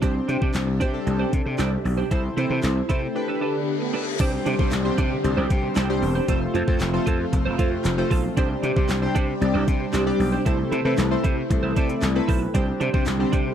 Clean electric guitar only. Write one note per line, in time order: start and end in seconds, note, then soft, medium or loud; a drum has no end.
0.02 0.16 D4 medium
0.02 0.15 G4 medium
0.02 0.14 C5 medium
0.15 muted clean electric guitar stroke soft
0.28 0.39 D4 medium
0.28 0.40 G4 medium
0.28 0.40 C5 medium
0.41 0.53 D4 medium
0.41 0.53 G4 medium
0.41 0.52 C5 medium
0.67 muted clean electric guitar stroke medium
0.80 0.95 D4 medium
0.80 0.94 G4 medium
0.80 0.92 C5 loud
0.93 muted clean electric guitar stroke soft
1.07 muted clean electric guitar stroke soft
1.19 1.31 D4 medium
1.19 1.32 G4 medium
1.19 1.33 C5 medium
1.46 muted clean electric guitar stroke soft
1.58 1.73 D4 medium
1.58 1.72 G4 loud
1.58 1.70 C5 medium
1.72 muted clean electric guitar stroke soft
1.85 muted clean electric guitar stroke soft
1.98 2.10 D4 medium
1.98 2.09 G4 medium
1.98 2.09 C5 medium
2.11 2.25 E4 medium
2.11 2.24 A4 medium
2.11 2.23 C5 medium
2.24 muted clean electric guitar stroke medium
2.37 2.48 E4 medium
2.37 2.49 A4 medium
2.37 2.49 C5 medium
2.50 2.62 E4 medium
2.50 2.62 A4 medium
2.50 2.61 C5 medium
2.76 muted clean electric guitar stroke medium
2.89 3.03 E4 medium
2.89 3.02 A4 medium
2.89 3.01 C5 medium
3.02 muted clean electric guitar stroke medium
3.15 muted clean electric guitar stroke soft
3.28 3.40 D4 soft
3.28 3.40 A4 medium
3.28 3.39 B4 medium
3.41 3.56 D4 medium
3.41 3.54 A4 medium
3.41 3.53 B4 loud
3.54 muted clean electric guitar stroke soft
3.80 muted clean electric guitar stroke soft
3.93 4.08 D4 medium
3.93 4.07 A4 medium
3.93 4.05 B4 medium
4.07 muted clean electric guitar stroke soft
4.20 4.34 D4 medium
4.20 4.33 G4 medium
4.20 4.32 C5 medium
4.33 muted clean electric guitar stroke medium
4.46 4.57 D4 medium
4.46 4.57 G4 medium
4.46 4.58 C5 medium
4.59 4.71 D4 medium
4.59 4.70 G4 medium
4.59 4.70 C5 medium
4.85 muted clean electric guitar stroke soft
4.98 5.12 D4 medium
4.98 5.11 G4 medium
4.98 5.10 C5 loud
5.11 muted clean electric guitar stroke soft
5.24 muted clean electric guitar stroke soft
5.37 5.49 D4 medium
5.37 5.50 G4 medium
5.37 5.50 C5 medium
5.50 muted clean electric guitar stroke soft
5.63 muted clean electric guitar stroke soft
5.76 5.90 D4 medium
5.76 5.89 G4 medium
5.76 5.88 C5 loud
5.89 muted clean electric guitar stroke soft
6.02 muted clean electric guitar stroke soft
6.15 6.27 D4 soft
6.15 6.27 G4 medium
6.15 6.26 C5 medium
6.28 6.43 F4 medium
6.28 6.41 A4 medium
6.28 6.40 C5 medium
6.41 muted clean electric guitar stroke soft
6.54 6.65 F4 medium
6.54 6.66 A4 medium
6.54 6.66 C5 medium
6.67 6.79 F4 medium
6.67 6.79 A4 medium
6.67 6.78 C5 medium
6.80 muted clean electric guitar stroke soft
6.93 muted clean electric guitar stroke soft
7.06 7.21 F4 medium
7.06 7.19 A4 medium
7.06 7.18 C5 medium
7.19 muted clean electric guitar stroke soft
7.33 muted clean electric guitar stroke soft
7.45 7.57 F4 medium
7.45 7.57 A4 medium
7.45 7.57 C5 medium
7.58 7.73 F4 loud
7.58 7.72 A4 medium
7.58 7.71 C5 loud
7.72 muted clean electric guitar stroke soft
7.98 muted clean electric guitar stroke medium
8.11 8.25 F4 medium
8.11 8.24 A4 medium
8.11 8.23 C5 medium
8.24 muted clean electric guitar stroke medium
8.37 8.51 D4 medium
8.37 8.50 G4 loud
8.37 8.49 C5 loud
8.50 muted clean electric guitar stroke medium
8.63 8.74 D4 medium
8.63 8.75 G4 medium
8.63 8.75 C5 medium
8.76 8.88 D4 medium
8.76 8.88 G4 medium
8.76 8.87 C5 medium
8.89 muted clean electric guitar stroke medium
9.02 muted clean electric guitar stroke medium
9.15 9.29 D4 medium
9.15 9.28 G4 medium
9.15 9.27 C5 loud
9.28 muted clean electric guitar stroke soft
9.41 muted clean electric guitar stroke soft
9.54 9.66 D4 medium
9.54 9.67 G4 medium
9.54 9.68 C5 medium
9.67 muted clean electric guitar stroke soft
9.80 muted clean electric guitar stroke medium
9.93 10.08 D4 medium
9.93 10.06 G4 medium
9.93 10.05 C5 medium
10.06 muted clean electric guitar stroke soft
10.20 muted clean electric guitar stroke soft
10.32 10.45 D4 medium
10.32 10.44 G4 medium
10.32 10.44 C5 medium
10.45 10.60 E4 medium
10.45 10.59 A4 medium
10.45 10.57 C5 medium
10.59 muted clean electric guitar stroke soft
10.71 10.83 E4 medium
10.71 10.83 A4 medium
10.71 10.83 C5 medium
10.85 10.97 E4 medium
10.85 10.96 A4 medium
10.85 10.96 C5 medium
11.11 muted clean electric guitar stroke soft
11.24 11.38 E4 medium
11.24 11.37 A4 medium
11.24 11.36 C5 loud
11.37 muted clean electric guitar stroke soft
11.50 muted clean electric guitar stroke soft
11.63 11.75 E4 medium
11.63 11.75 A4 medium
11.63 11.74 C5 medium
11.76 11.90 E4 medium
11.76 11.89 A4 loud
11.76 11.88 C5 loud
11.89 muted clean electric guitar stroke medium
12.15 muted clean electric guitar stroke soft
12.28 12.42 E4 medium
12.28 12.41 A4 medium
12.28 12.40 C5 loud
12.41 muted clean electric guitar stroke soft
12.54 12.68 D4 medium
12.54 12.67 G4 medium
12.54 12.66 C5 medium
12.67 muted clean electric guitar stroke soft
12.80 12.92 D4 medium
12.80 12.92 G4 medium
12.80 12.92 C5 medium
12.93 13.05 D4 medium
12.93 13.05 G4 medium
12.93 13.05 C5 medium
13.06 muted clean electric guitar stroke soft
13.19 muted clean electric guitar stroke medium
13.32 13.47 D4 medium
13.32 13.46 G4 medium
13.32 13.44 C5 medium
13.46 muted clean electric guitar stroke soft